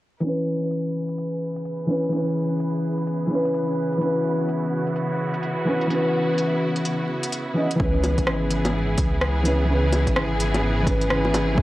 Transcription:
0.20 felt piano E3, synth texture B4, closed hi-hat
0.24 string section C#3 B3 E4 G#4, felt piano C#4 B4
0.71 closed hi-hat
1.09 closed hi-hat
1.18 closed hi-hat
1.56 closed hi-hat
1.65 closed hi-hat
1.87 felt piano E3 C#4
1.91 felt piano B4
2.04 closed hi-hat
2.09 felt piano E3 C#4
2.13 felt piano B4, closed hi-hat
2.60 closed hi-hat
2.98 closed hi-hat
3.07 closed hi-hat
3.27 felt piano E3
3.31 felt piano C#4
3.35 felt piano B4
3.45 closed hi-hat
3.54 closed hi-hat
3.93 closed hi-hat
3.97 felt piano E3
4.01 felt piano C#4, string section F#4, closed hi-hat
4.05 felt piano B4
4.49 closed hi-hat
4.87 closed hi-hat
4.96 closed hi-hat
5.34 closed hi-hat
5.43 closed hi-hat
5.65 felt piano E3 C#4 B4
5.81 closed hi-hat
5.87 felt piano E3 C#4, closed hi-hat
5.95 felt piano B4
6.38 closed hi-hat
6.76 closed hi-hat
6.85 closed hi-hat
7.23 closed hi-hat
7.32 closed hi-hat
7.54 felt piano E3 C#4
7.58 felt piano D#5
7.71 closed hi-hat
7.75 felt piano E3 C#4
7.80 detuned saw bass C#2, string section C#3 B3 E4 G#4, felt piano B4, kick
8.04 closed hi-hat, low bongo
8.18 detuned saw bass G#1, kick, closed hi-hat
8.27 cross-stick
8.50 closed hi-hat
8.65 closed hi-hat, low bongo
8.74 detuned saw bass G#1
8.98 detuned saw bass C#2, kick, closed hi-hat
9.21 cross-stick
9.43 felt piano E3 C#4 B4, closed hi-hat
9.65 felt piano E3
9.69 detuned saw bass C#2, felt piano C#4 B4
9.92 closed hi-hat, low bongo
10.07 detuned saw bass G#1, kick, closed hi-hat
10.16 cross-stick
10.40 closed hi-hat
10.54 closed hi-hat, low bongo
10.63 detuned saw bass G#1
10.82 felt piano E3 C#4
10.87 felt piano B4, kick, closed hi-hat
11.01 closed hi-hat
11.10 cross-stick
11.25 low bongo
11.34 closed hi-hat, low bongo
11.54 detuned saw bass C#2, felt piano E3, kick
11.58 felt piano C#4

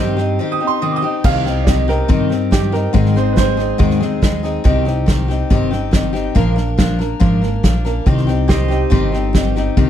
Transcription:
Already playing: upright bass G2, steel-string acoustic guitar C3 D#3 C4 D#4 G4, pedal steel guitar G4 C5 D#5
0.17 steel-string acoustic guitar C4 D#4 G4, snare
0.39 steel-string acoustic guitar D#3 C4 D#4 G4
0.52 upright piano D#6
0.60 steel-string acoustic guitar C4 D#4 G4
0.67 upright piano C6
0.82 steel-string acoustic guitar C3 D#3 C4 D#4 G4, upright piano D#6
0.92 upright piano D6
0.96 upright piano D#6
1.02 steel-string acoustic guitar C4 D#4 G4
1.24 upright bass C2, steel-string acoustic guitar C3 D#3 C4 D#4 G4, upright piano F5, kick, snare, crash
1.45 steel-string acoustic guitar C4 D#4 G4, snare
1.63 steel-string acoustic guitar D#3, upright piano D5, kick, snare, hi-hat pedal
1.68 steel-string acoustic guitar C4 D#4 G4, upright piano D#5
1.88 steel-string acoustic guitar C4 D#4 G4, upright piano A#4, snare
2.08 upright bass G2, steel-string acoustic guitar C3 D#3 C4 D#4 G4, kick, snare
2.29 steel-string acoustic guitar C4 D#4 G4, snare
2.51 steel-string acoustic guitar D#3 C4 D#4 G4, upright piano G4, kick, snare, hi-hat pedal
2.72 steel-string acoustic guitar C4 D#4 G4, upright piano A#4, snare
2.93 upright bass G#1, steel-string acoustic guitar G#2 D#3 G#3 C4 D#4 G#4, kick, snare
3.06 snare
3.14 steel-string acoustic guitar G#3 C4 D#4 G#4, upright piano C5, snare
3.33 steel-string acoustic guitar G#3, upright piano B4
3.37 steel-string acoustic guitar C4 D#4 G#4, upright piano C5, kick, snare, hi-hat pedal
3.57 steel-string acoustic guitar G#3 C4 D#4 G#4, snare
3.78 upright bass D#2, steel-string acoustic guitar G#2 D#3 G#3 C4 D#4 G#4, kick, snare
3.90 snare
4.00 steel-string acoustic guitar G#3 C4 D#4 G#4, snare
4.22 steel-string acoustic guitar G#3 C4 D#4 G#4, kick, snare, hi-hat pedal
4.43 steel-string acoustic guitar G#3 C4 D#4 G#4, snare
4.64 upright bass C2, steel-string acoustic guitar C3 D#3 C4 D#4 G4, kick, snare
4.85 steel-string acoustic guitar C4 D#4 G4, snare
5.06 steel-string acoustic guitar D#3 C4 D#4 G4, kick, snare, hi-hat pedal
5.28 steel-string acoustic guitar C4 D#4 G4, snare
5.50 upright bass G1, steel-string acoustic guitar C3 D#3 C4 D#4 G4, kick, snare
5.71 steel-string acoustic guitar C4 D#4 G4, snare
5.91 steel-string acoustic guitar D#3 C4 D#4 G4, kick, snare, hi-hat pedal
6.13 steel-string acoustic guitar C4 D#4 G4, snare
6.35 upright bass A#1, steel-string acoustic guitar A#2 F3 A#3 D4 A#4, kick, snare
6.56 steel-string acoustic guitar A#3 D4 A#4, snare
6.78 steel-string acoustic guitar F3 A#3 D4 A#4, kick, snare, hi-hat pedal
6.99 steel-string acoustic guitar A#3 D4 A#4, snare
7.20 upright bass G#1, steel-string acoustic guitar A#2 F3 A#3 D4 A#4, kick, snare
7.42 steel-string acoustic guitar A#3 D4 A#4, snare
7.63 upright bass A#1, steel-string acoustic guitar F3 A#3 D4 A#4, kick, snare, hi-hat pedal
7.85 steel-string acoustic guitar A#3 D4 A#4, snare
8.06 upright bass C2, steel-string acoustic guitar C3 D#3 C4 D#4 G4, kick, snare
8.18 snare
8.27 steel-string acoustic guitar C4 D#4 G4, snare
8.48 steel-string acoustic guitar D#3 C4 D#4 G4, pedal steel guitar G4 C5 D#5, kick, snare, hi-hat pedal
8.68 steel-string acoustic guitar C4 D#4 G4, snare
8.90 upright bass G1, steel-string acoustic guitar C3 D#3 C4 D#4 G4, kick, snare
9.12 steel-string acoustic guitar C4 D#4 G4, snare
9.33 steel-string acoustic guitar D#3 C4 D#4 G4, kick, snare, hi-hat pedal
9.56 steel-string acoustic guitar C4 D#4 G4, snare
9.77 upright bass C2, steel-string acoustic guitar C3 D#3 C4 D#4 G4, kick, snare

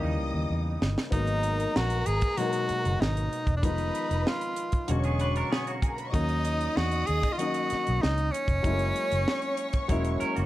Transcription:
Already playing: grand piano C#3 E3 G3 A#3 D#4, string section D#5 D#6
0.03 fingered electric bass D#2, clean electric guitar G3 D#4
0.18 fingered electric bass C#2
0.34 fingered electric bass D#2
0.50 fingered electric bass E2
0.82 fingered electric bass G1, snare
0.98 snare
1.11 fingered electric bass G#1, grand piano F#3 G#3 A#3 B3 D#4, tenor saxophone D#4, string section A#4 A#5, kick, closed hi-hat
1.27 closed hi-hat
1.43 closed hi-hat
1.60 closed hi-hat
1.76 fingered electric bass A#1, tenor saxophone F#4, snare
1.90 closed hi-hat
2.06 fingered electric bass G#1, tenor saxophone G#4, closed hi-hat
2.21 kick, closed hi-hat
2.37 grand piano B2 F#3 G#3 A#3 D#4, tenor saxophone F#4, closed hi-hat
2.53 closed hi-hat
2.69 muted fingered electric bass stroke, closed hi-hat
2.85 fingered electric bass F#1, closed hi-hat
3.01 fingered electric bass G#1, tenor saxophone D#4, snare
3.17 closed hi-hat
3.33 closed hi-hat
3.47 fingered electric bass E1, kick, closed hi-hat
3.57 tenor saxophone D4
3.62 fingered electric bass F1, grand piano D#3 F3 G#3 B3 D#4, tenor saxophone D#4, string section B4 B5, kick, closed hi-hat
3.78 closed hi-hat
3.95 closed hi-hat
4.11 fingered electric bass F1, closed hi-hat
4.27 tenor saxophone F4, snare
4.41 closed hi-hat
4.56 closed hi-hat
4.72 kick, closed hi-hat
4.88 fingered electric bass E1, grand piano B2 D3 F#3 G#3 C#4, clean electric guitar A#3 F#4, string section C#5 C#6, closed hi-hat
5.04 clean electric guitar B3 G#4, closed hi-hat
5.19 clean electric guitar D4 B4, closed hi-hat
5.36 clean electric guitar D4 A#4, closed hi-hat
5.52 clean electric guitar B3 G#4, snare
5.67 clean electric guitar A#3 F#4, closed hi-hat
5.82 string section G#4 G#5, kick, closed hi-hat
5.90 string section A#4 A#5
5.97 string section B4 B5, closed hi-hat
6.06 string section C#5 C#6
6.12 fingered electric bass D#2, grand piano D#3 F#3 A#3 C#4, tenor saxophone D#4, string section D#5 D#6, kick, closed hi-hat
6.16 grand piano D#4
6.29 closed hi-hat
6.45 closed hi-hat
6.61 closed hi-hat
6.77 fingered electric bass E2, tenor saxophone F#4, snare
6.92 closed hi-hat
7.07 fingered electric bass D#2, tenor saxophone G#4, closed hi-hat
7.23 kick, closed hi-hat
7.33 tenor saxophone F4
7.37 grand piano D#3 F#3 A#3 C#4 D#4, tenor saxophone F#4, closed hi-hat
7.54 closed hi-hat
7.70 muted fingered electric bass stroke, snare, closed hi-hat
7.87 fingered electric bass B1, closed hi-hat
8.02 fingered electric bass C#2, tenor saxophone D#4, snare
8.18 closed hi-hat
8.32 tenor saxophone C#4, closed hi-hat
8.48 fingered electric bass F1, kick, closed hi-hat
8.62 fingered electric bass F#1, grand piano F#3 G#3 A3 C#4 E4, string section C#5 C#6, kick, closed hi-hat
8.71 grand piano A#3
8.79 closed hi-hat
8.96 closed hi-hat
9.12 fingered electric bass F#1, closed hi-hat
9.28 snare
9.42 closed hi-hat
9.57 closed hi-hat
9.73 kick, closed hi-hat
9.88 fingered electric bass E1, grand piano F#3 G#3 A#3 C#4 E4, clean electric guitar E4 C#5, kick, closed hi-hat
10.04 closed hi-hat
10.20 clean electric guitar C#4 A#4, muted fingered electric bass stroke, closed hi-hat
10.36 fingered electric bass F#1, clean electric guitar A#3 F#4, closed hi-hat

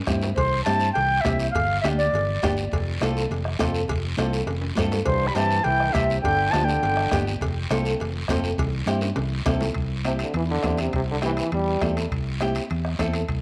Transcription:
0.07 fingered electric bass G2, nylon-string guitar C4 E4 G4, bombo low, bombo rim, high conga, low conga, short guiro
0.22 low timbale, short guiro
0.36 fingered electric bass C2, flute C5, bombo low, cowbell, high conga, low conga, long guiro
0.64 fingered electric bass G2, nylon-string guitar C4 E4 G4, flute A5, bombo rim, cowbell, high conga, short guiro
0.80 short guiro
0.93 fingered electric bass C2, flute G5, cowbell, high conga, low conga, long guiro
1.21 flute E5, bombo rim, high conga, low conga, short guiro
1.25 fingered electric bass C2, nylon-string guitar C4 E4 G4, bombo low, cowbell
1.39 short guiro
1.51 flute F5, bombo low, long guiro
1.55 fingered electric bass G1, cowbell, high conga, low conga
1.81 fingered electric bass D2, nylon-string guitar B3 D4 G4, flute E5, bombo rim, cowbell, high conga, short guiro
1.97 flute D5, short guiro
2.13 fingered electric bass G1, cowbell, high conga, low conga, long guiro
2.42 fingered electric bass G1, nylon-string guitar B3 D4 G4, bombo low, bombo rim, cowbell, high conga, low timbale, short guiro
2.57 short guiro
2.72 fingered electric bass F1, bombo low, cowbell, high conga, low conga, long guiro
3.01 fingered electric bass C2, nylon-string guitar C4 F4 A4, bombo rim, cowbell, high conga, short guiro
3.17 short guiro
3.30 fingered electric bass F1, cowbell, high conga, low conga, long guiro
3.45 bombo rim
3.59 fingered electric bass F1, nylon-string guitar C4 F4 A4, bombo low, bombo rim, cowbell, high conga, low conga, short guiro
3.74 short guiro
3.88 fingered electric bass F1, bombo low, cowbell, high conga, low conga, long guiro
4.17 fingered electric bass C2, nylon-string guitar C4 F4 A4, bombo rim, cowbell, high conga, short guiro
4.33 short guiro
4.46 fingered electric bass F1, cowbell, high conga, low conga, high timbale, long guiro
4.61 high timbale
4.75 fingered electric bass G2, nylon-string guitar C4 F4 A4, bombo low, bombo rim, cowbell, high conga, low timbale, short guiro
4.92 low timbale, short guiro
5.05 fingered electric bass C2, trombone G2, flute C5, bombo low, cowbell, high conga, low conga, long guiro
5.27 trombone G3, flute B5
5.34 fingered electric bass G2, trombone E3, nylon-string guitar C4 E4 G4, flute A5, bombo rim, cowbell, high conga, short guiro
5.51 short guiro
5.63 fingered electric bass C2, trombone E3, flute G5, cowbell, high conga, low conga, long guiro
5.80 bombo rim
5.93 fingered electric bass C2, trombone C3, nylon-string guitar C4 E4 G4, flute E5, bombo low, bombo rim, cowbell, high conga, low conga, short guiro
6.10 short guiro
6.21 fingered electric bass G1, trombone D3, flute G5, bombo low, cowbell, high conga, low conga
6.26 long guiro
6.51 fingered electric bass D2, trombone F3, nylon-string guitar B3 D4 G4, flute A5, bombo rim, cowbell, high conga, short guiro
6.64 trombone D3, flute G5
6.69 short guiro
6.83 fingered electric bass G1, cowbell, high conga, low conga, long guiro
6.97 bombo rim
7.11 fingered electric bass G1, nylon-string guitar B3 D4 G4, bombo low, bombo rim, cowbell, high conga, low conga, low timbale, short guiro
7.27 short guiro
7.41 fingered electric bass F1, bombo low, cowbell, high conga, low conga, long guiro
7.70 fingered electric bass C2, nylon-string guitar C4 F4 A4, bombo rim, cowbell, high conga, short guiro
7.85 short guiro
7.99 fingered electric bass F1, cowbell, high conga, low conga, long guiro
8.28 fingered electric bass F1, nylon-string guitar C4 F4 A4, bombo low, bombo rim, cowbell, high conga, low timbale, short guiro
8.44 short guiro
8.58 fingered electric bass C2, bombo low, cowbell, high conga, low conga, long guiro
8.86 fingered electric bass G2, nylon-string guitar C4 E4 G4, bombo rim, cowbell, high conga, short guiro
9.01 high timbale, short guiro
9.16 fingered electric bass C2, cowbell, high conga, low conga, high timbale, long guiro
9.46 fingered electric bass C2, nylon-string guitar C4 E4 A4, bombo low, bombo rim, cowbell, high conga, low conga, low timbale, short guiro
9.61 low timbale, short guiro
9.74 fingered electric bass C2, bombo low, high conga, high timbale, long guiro
10.05 trombone C3, nylon-string guitar C4 E4 G4, bombo rim, high conga, high timbale, short guiro
10.19 trombone D3, high timbale, short guiro
10.34 fingered electric bass E2, trombone E3, high conga, high timbale, long guiro
10.51 trombone D3
10.63 fingered electric bass E2, nylon-string guitar C4 E4 G4, bombo low, bombo rim, high conga, high timbale, low timbale, short guiro
10.77 trombone C3, high timbale, short guiro
10.93 fingered electric bass C2, trombone C3, bombo low, high conga, high timbale, long guiro
11.11 trombone D3
11.22 nylon-string guitar C4 E4 G4, bombo rim, high conga, high timbale, short guiro
11.26 trombone E3
11.37 trombone E3, high timbale, short guiro
11.52 fingered electric bass E2, trombone G3, high conga, high timbale, long guiro
11.81 fingered electric bass E2, nylon-string guitar C4 E4 A4, bombo low, bombo rim, high conga, high timbale, low timbale, short guiro
11.97 high timbale, short guiro
12.11 fingered electric bass C2, bombo low, high conga, high timbale, long guiro
12.40 nylon-string guitar C4 E4 G4, bombo rim, high conga, high timbale, short guiro
12.55 high timbale, short guiro
12.69 fingered electric bass E2, high conga, high timbale, long guiro
12.85 bombo rim
12.99 fingered electric bass E2, nylon-string guitar C4 E4 A4, bombo low, bombo rim, high conga, high timbale, short guiro
13.13 high timbale, short guiro
13.28 fingered electric bass C2, bombo low, high conga, high timbale, long guiro

